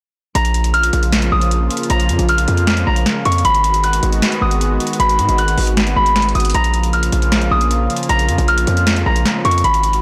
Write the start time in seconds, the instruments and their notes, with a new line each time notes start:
0.35 808-style bass A#1, analog synth pad C#3 F3 A#3 F4, harp A#5, closed hi-hat
0.45 closed hi-hat
0.54 closed hi-hat
0.64 closed hi-hat
0.74 harp F6, closed hi-hat
0.83 closed hi-hat
0.93 808-style bass A#1, closed hi-hat
1.03 closed hi-hat
1.12 snare, closed hi-hat
1.22 closed hi-hat
1.32 808-style bass A#1, harp D#6
1.41 closed hi-hat
1.51 closed hi-hat
1.71 closed hi-hat
1.77 closed hi-hat
1.83 closed hi-hat
1.90 808-style bass A#1, harp A#5, closed hi-hat
2.00 closed hi-hat
2.09 808-style bass F2, closed hi-hat
2.19 808-style bass A#1, closed hi-hat
2.29 harp F6, closed hi-hat
2.38 closed hi-hat
2.48 808-style bass F2, closed hi-hat
2.57 closed hi-hat
2.67 snare, closed hi-hat
2.77 closed hi-hat
2.87 808-style bass A#1, harp A#5
2.96 closed hi-hat
3.06 snare, closed hi-hat
3.25 808-style bass F2, harp C#6, closed hi-hat
3.32 closed hi-hat
3.38 closed hi-hat
3.45 808-style bass G#1, analog synth pad D#3 G#3 B3 F#4, harp B5, closed hi-hat
3.55 closed hi-hat
3.64 closed hi-hat
3.74 closed hi-hat
3.84 harp F#6, closed hi-hat
3.93 closed hi-hat
4.03 808-style bass G#1, closed hi-hat
4.12 closed hi-hat
4.22 snare, closed hi-hat
4.32 closed hi-hat
4.42 808-style bass G#1, harp D#6
4.51 closed hi-hat
4.61 closed hi-hat
4.80 closed hi-hat
4.87 closed hi-hat
4.93 closed hi-hat
5.00 808-style bass G#1, harp B5, closed hi-hat
5.09 closed hi-hat
5.19 808-style bass G#2, closed hi-hat
5.29 808-style bass G#1, closed hi-hat
5.38 harp F#6, closed hi-hat
5.48 closed hi-hat
5.58 808-style bass G#1, open hi-hat
5.67 closed hi-hat
5.77 snare, closed hi-hat
5.87 closed hi-hat
5.96 808-style bass G#1, harp B5
6.06 closed hi-hat
6.16 snare, closed hi-hat
6.22 closed hi-hat
6.29 closed hi-hat
6.35 808-style bass G#1, harp D#6, closed hi-hat
6.40 closed hi-hat
6.45 closed hi-hat
6.50 closed hi-hat
6.54 808-style bass A#1, analog synth pad C#3 F3 A#3 F4, harp A#5, closed hi-hat
6.64 closed hi-hat
6.74 closed hi-hat
6.83 closed hi-hat
6.93 harp F6, closed hi-hat
7.03 closed hi-hat
7.12 808-style bass A#1, closed hi-hat
7.22 closed hi-hat
7.32 snare, closed hi-hat
7.42 closed hi-hat
7.51 808-style bass A#1, harp D#6
7.61 closed hi-hat
7.71 closed hi-hat
7.90 closed hi-hat
7.96 closed hi-hat
8.03 closed hi-hat
8.09 808-style bass A#1, harp A#5, closed hi-hat
8.19 closed hi-hat
8.29 808-style bass F2, closed hi-hat
8.38 808-style bass A#1, closed hi-hat
8.48 harp F6, closed hi-hat
8.58 closed hi-hat
8.67 808-style bass F2, closed hi-hat
8.77 closed hi-hat
8.87 snare, closed hi-hat
8.96 closed hi-hat
9.06 808-style bass A#1, harp A#5
9.16 closed hi-hat
9.26 snare, closed hi-hat
9.45 808-style bass F2, harp C#6, closed hi-hat
9.51 closed hi-hat
9.58 closed hi-hat
9.64 808-style bass G#1, analog synth pad D#3 G#3 B3 F#4, harp B5, closed hi-hat
9.74 closed hi-hat
9.83 closed hi-hat
9.93 closed hi-hat